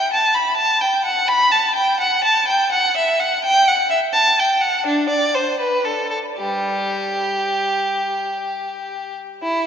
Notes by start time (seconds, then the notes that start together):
Already playing: G5
0.13 A5
0.35 B5
0.57 A5
0.81 G5
1.05 F#5
1.28 B5
1.52 A5
1.75 G5
2.00 F#5
2.24 A5
2.48 G5
2.72 F#5
2.97 E5
3.20 F#5
3.44 G5
3.68 F#5
3.91 E5
4.13 A5
4.40 G5
4.61 F#5
4.86 D4
5.09 D5
5.35 C5
5.60 B4
5.85 A4
6.11 A4
6.38 G3 G4
9.43 E4